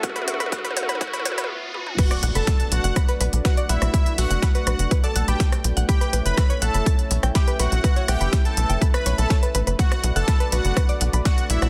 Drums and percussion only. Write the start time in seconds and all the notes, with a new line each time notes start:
0.03 kick, closed hi-hat, mid tom
0.09 mid tom
0.16 closed hi-hat, mid tom
0.22 mid tom
0.28 closed hi-hat, mid tom
0.34 mid tom
0.40 closed hi-hat, mid tom
0.46 mid tom
0.52 kick, closed hi-hat, mid tom
0.58 mid tom
0.65 closed hi-hat, mid tom
0.71 mid tom
0.77 closed hi-hat, mid tom
0.83 mid tom
0.89 closed hi-hat, mid tom
0.95 mid tom
1.01 kick, closed hi-hat, mid tom
1.07 mid tom
1.13 closed hi-hat, mid tom
1.19 mid tom
1.25 closed hi-hat, mid tom
1.32 mid tom
1.38 closed hi-hat, mid tom
1.44 mid tom
1.74 high tom
1.86 mid tom
1.98 kick, closed hi-hat, crash
2.11 cross-stick, closed hi-hat
2.23 closed hi-hat
2.35 closed hi-hat
2.47 kick, snare, closed hi-hat
2.60 closed hi-hat
2.72 closed hi-hat
2.84 closed hi-hat
2.96 kick, cross-stick, closed hi-hat
3.08 closed hi-hat
3.21 closed hi-hat
3.33 closed hi-hat
3.45 kick, snare, closed hi-hat
3.57 closed hi-hat
3.69 closed hi-hat
3.82 cross-stick, closed hi-hat
3.94 kick, closed hi-hat
4.06 closed hi-hat
4.18 closed hi-hat, open hi-hat
4.31 closed hi-hat
4.42 kick, snare, closed hi-hat
4.55 closed hi-hat
4.67 cross-stick, closed hi-hat
4.79 closed hi-hat
4.91 kick, closed hi-hat
5.04 closed hi-hat
5.16 closed hi-hat
5.28 closed hi-hat
5.40 kick, snare, closed hi-hat
5.52 cross-stick, closed hi-hat
5.64 closed hi-hat
5.77 closed hi-hat
5.89 kick, closed hi-hat
6.01 closed hi-hat
6.13 closed hi-hat
6.26 closed hi-hat
6.37 kick, cross-stick, snare, closed hi-hat
6.50 closed hi-hat
6.62 closed hi-hat
6.74 closed hi-hat
6.86 kick, closed hi-hat
6.99 closed hi-hat
7.11 closed hi-hat
7.23 cross-stick, closed hi-hat
7.35 kick, snare, closed hi-hat
7.48 closed hi-hat
7.59 closed hi-hat
7.72 closed hi-hat
7.84 kick, closed hi-hat
7.96 closed hi-hat
8.08 cross-stick, closed hi-hat, open hi-hat
8.21 closed hi-hat
8.33 kick, snare, closed hi-hat
8.45 closed hi-hat
8.57 closed hi-hat
8.70 closed hi-hat
8.81 kick, closed hi-hat
8.94 cross-stick, closed hi-hat
9.06 closed hi-hat
9.18 closed hi-hat
9.30 kick, snare, closed hi-hat
9.43 closed hi-hat
9.55 closed hi-hat
9.67 closed hi-hat
9.79 kick, closed hi-hat
9.92 cross-stick, closed hi-hat
10.03 closed hi-hat
10.16 closed hi-hat
10.28 kick, snare, closed hi-hat
10.40 closed hi-hat
10.52 closed hi-hat
10.65 closed hi-hat
10.77 kick, cross-stick, closed hi-hat
10.89 closed hi-hat
11.01 closed hi-hat
11.13 closed hi-hat
11.25 kick, snare, closed hi-hat
11.38 closed hi-hat
11.50 closed hi-hat
11.62 cross-stick, closed hi-hat